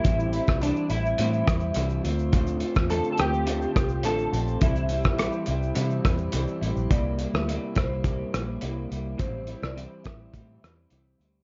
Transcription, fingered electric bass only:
\new Staff \with { instrumentName = "Fingered electric bass" } { \clef bass \time 4/4 \key c \mixolydian \tempo 4 = 105 a,,8. c,8 r16 a,,8 a,8 e,8 c,8 d,8~ | d,8. e,8 r16 d,4 c,8 a,,8 bes,,8 | c,8. bes,,8 r16 c,8 c8 e,8 c,16 r16 a,,16 bes,,16 | c,8. d,8 r16 c,4 bes,,8 c,8 c,8 |
a,,8. c,8 r16 a,,8 a,8 e,8 c,8 d,8 | }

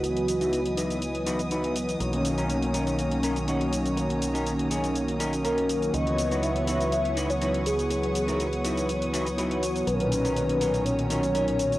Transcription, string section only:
\new Staff \with { instrumentName = "String section" } { \time 4/4 \key cis \dorian \tempo 4 = 122 << { dis'''1~ | dis'''1~ | dis'''1 | cis'''1~ |
cis'''1 | r1 | } \\ { <b' gis''>1 | <cis'' ais''>1~ | <cis'' ais''>1 | <b' fis'' dis'''>1~ |
<b' fis'' dis'''>1 | <cis'' ais''>1 | } >> }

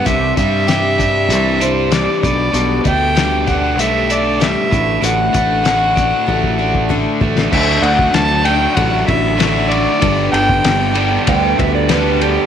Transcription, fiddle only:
\new Staff \with { instrumentName = "Fiddle" } { \time 4/4 \key g \major \tempo 4 = 96 e''8 e''2 c''8 d''8 d''8~ | d''8 g''4 fis''8 e''8 d''8 e''4 | fis''2. r4 | e''8 fis''8 a''8 g''8 fis''8 e''4 d''8~ |
d''8 g''4. r2 | }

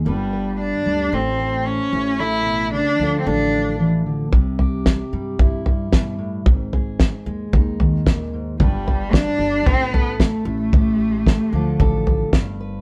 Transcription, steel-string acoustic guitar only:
\new Staff \with { instrumentName = "Steel-string acoustic guitar" } { \clef bass \time 4/4 \key g \mixolydian \tempo 4 = 112 << { <g b d' b'>8 b'4. r8 c''4 r8 | a4. <f d' f' a'>8 a'2 | r8 g'4. e'2 | r8 aes'4. ees'2 |
<g b d' b'>8 b'4. r8 a'4 r8 | g'4. <f d' f' a'>8 a'4 r8 b'8 | } \\ { g,4. g8 a,4. a,8~ | a,8 b,8 cis8 d4. e8 d8 | c4. g4 g,8 b,8 a,8 | aes,4. aes4 ees8 bes,8 aes,8 |
g,4. g8 a,4. a,8~ | a,4 a8 d4. g,4 | } >> }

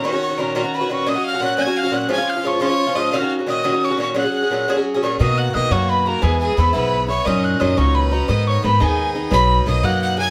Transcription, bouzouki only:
\new Staff \with { instrumentName = "Bouzouki" } { \time 6/8 \key fis \major \tempo 4. = 116 <ais, dis cis' fis'>16 <dis cis' fis'>8 <dis cis' fis'>16 <ais, dis cis' fis'>8 <ais, dis cis' fis'>16 <dis cis' fis'>8 <dis cis' fis'>16 <ais, dis cis' fis'>8 | <ais, fis cis' fis'>16 <fis cis' fis'>8 <fis cis' fis'>16 <ais, fis cis' fis'>8 <ais, fis cis' fis'>16 <fis cis' fis'>8 <fis cis' fis'>16 <ais, fis cis' fis'>8 | <gis, eis cis' eis'>16 <eis cis' eis'>8 <eis cis' eis'>16 <gis, eis cis' eis'>8 <gis, eis cis' eis'>16 <eis cis' eis'>8 <eis cis' eis'>16 <gis, eis cis' eis'>8 | <ais, dis cis' fis'>16 <dis cis' fis'>8 <dis cis' fis'>16 <ais, dis cis' fis'>8 <ais, dis cis' fis'>16 <dis cis' fis'>8 <dis cis' fis'>16 <ais, dis cis' fis'>8 |
<ais, fis cis' gis'>16 <fis cis' gis'>8 <fis cis' gis'>16 <ais, fis cis' gis'>8 <ais, fis cis' gis'>16 <fis cis' gis'>8 <fis cis' gis'>16 <ais, fis cis' gis'>8 | \key b \major <b, dis ais fis'>4 <b, dis ais fis'>8 <b, dis ais fis'>4 <dis ais fis'>8 | <gis, e b e'>4 <gis, e b e'>8 <gis, e b e'>4 <e b e'>8 | <ais, fis cis' dis'>4 <ais, fis cis' dis'>8 <ais, fis cis' dis'>4 <fis cis' dis'>8 |
<gis, dis b dis'>4 <gis, dis b dis'>8 <gis, dis b dis'>4 <dis b dis'>8 | <b, fis dis'>4 <b, fis ais dis'>8 <b, fis ais dis'>4 <fis ais dis'>8 | }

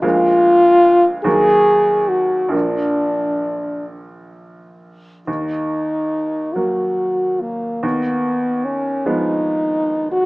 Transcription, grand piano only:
\new Staff \with { instrumentName = "Grand piano" } { \clef bass \time 6/8 \key ees \minor \tempo 4. = 47 <d, f aes bes>4. <ees, ges bes>4. | <bes,, f bes>2. | ees,4. <ges bes>4. | ees,4. <f aes ces'>4. | }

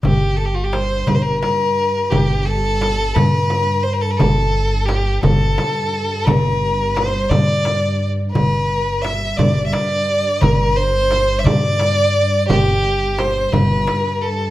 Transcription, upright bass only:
\new Staff \with { instrumentName = "Upright bass" } { \clef bass \time 6/8 \tempo 4. = 58 g,,4. g,,8 r4 | g,,4. g,4. | g,,4. g,,8 r4 | g,,4. g,4. |
g,,4. g,,8 r4 | g,,4. g,4. | g,,4. g,,8 r4 | }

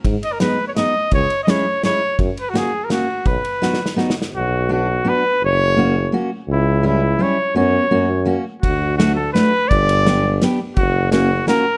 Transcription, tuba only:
\new Staff \with { instrumentName = "Tuba" } { \clef bass \time 3/4 \key b \major \tempo 4 = 168 gis,8 r2 r8 | cis,8 r2 r8 | fis,8 r2 r8 | b,,8 r2 r8 |
\key b \minor b,,2. | fis,,2. | cis,2. | fis,4 fis,2 |
d,2. | g,,2. | fis,,2. | }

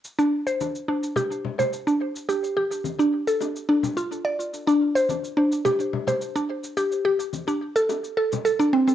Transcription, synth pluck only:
\new Staff \with { instrumentName = "Synth pluck" } { \time 4/4 \key d \minor \tempo 4 = 107 r16 d'16 r16 c''16 r8 d'16 r16 g'8. c''16 r16 d'16 r8 | g'8 g'16 r8 d'16 r16 a'8. d'8 f'8 d''8~ | d''16 d'16 r16 c''16 r8 d'16 r16 g'8. c''16 r16 d'16 r8 | g'8 g'16 r8 d'16 r16 a'8. a'16 r16 a'16 d'16 c'16 c'16 | }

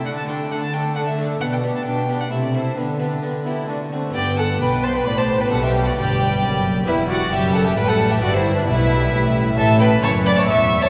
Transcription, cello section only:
\new Staff \with { instrumentName = "Cello section" } { \clef bass \time 3/4 \key g \major \tempo 4 = 133 d4 d4 d4 | b,4 b,4 c4 | d4 d4 d4 | g,4 b,4 a,4 |
b,4 g,4 fis,4 | e,4 fis,4 a,4 | g,4 b,4 a,4 | a,4 fis,4 e,4 | }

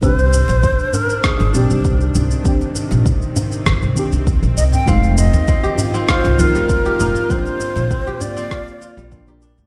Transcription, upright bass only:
\new Staff \with { instrumentName = "Upright bass" } { \clef bass \time 4/4 \key c \minor \tempo 4 = 99 c,8. bes,,16 r4 r16 g,,16 bes,,16 c,8. c,16 r16 | r8. bes,,16 r4 g,,16 c,16 r16 c,16 r16 bes,,16 c,16 r16 | f,,8. ees,16 r4 r16 c,16 ees,16 f,,8. f,,16 r16 | r8. bes,,16 r4. r16 bes,,4 d,16 | }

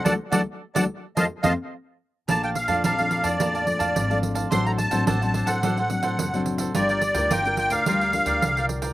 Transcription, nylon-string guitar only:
\new Staff \with { instrumentName = "Nylon-string guitar" } { \time 4/4 \key f \mixolydian \tempo 4 = 108 << { <fis a d'>16 r16 <fis a d'>16 r8 <fis a d'>16 r8 <f a c'>16 r16 <f a c'>16 r4 r16 | \key bes \major <f a d'>8 r16 <f a d'>8 <f a d'>8. <f a d'>8 <f a d'>8. <f a d'>8. | <fis c' d'>8. <fis c' d'>8 <fis c' d'>8. <fis c' d'>16 r16 <fis c' d'>8. <fis c' d'>8. | <d' f' bes'>8 r16 <d' f' bes'>8 <d' f' bes'>8. <d' f' bes'>16 r16 <d' f' bes'>8 r16 <d' f' bes'>8. | } \\ { r1 | bes,4 f,4 bes,4 f,4 | a,4 a,4 a,4 a,4 | g4 d4 g4 d4 | } >> }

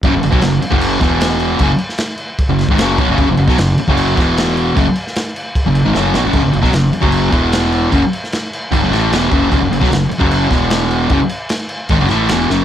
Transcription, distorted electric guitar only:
\new Staff \with { instrumentName = "Distorted electric guitar" } { \clef bass \time 4/4 \key fis \minor \tempo 4 = 152 <fis, cis>16 <fis, cis>16 <fis, cis>16 <b, fis>16 <fis, cis>8 r16 <fis, cis fis>8. <e, b, e>4. | <fis, cis>16 r2 <fis, cis>8 <gis, dis>16 <fis, cis fis>8 <b, fis>16 <fis, cis>16 | <fis, cis>16 <fis, cis>16 <fis, cis>16 <b, fis>16 <fis, cis>8 r16 <fis, cis fis>8. <e, b, e>4. | <fis, cis>16 r2 <fis, cis>8 <gis, dis>16 <fis, cis fis>8 <b, fis>16 <fis, cis>16 |
<fis, cis>16 <fis, cis>16 <fis, cis>16 <b, fis>16 <fis, cis>8 r16 <fis, cis fis>8. <e, b, e>4. | <fis, cis>16 r4. r16 <gis, dis>16 <fis, cis>16 <a, e a>8 <e, b, e>8 <fis, cis fis>8 | <fis, cis>16 <fis, cis>16 <fis, cis>16 <b, fis>16 <fis, cis>8 r16 <fis, cis fis>8. <e, b, e>4. | <fis, cis>16 r4. r16 <gis, dis>16 <fis, cis>16 <a, e a>8 <e, b, e>8 <fis, cis fis>8 | }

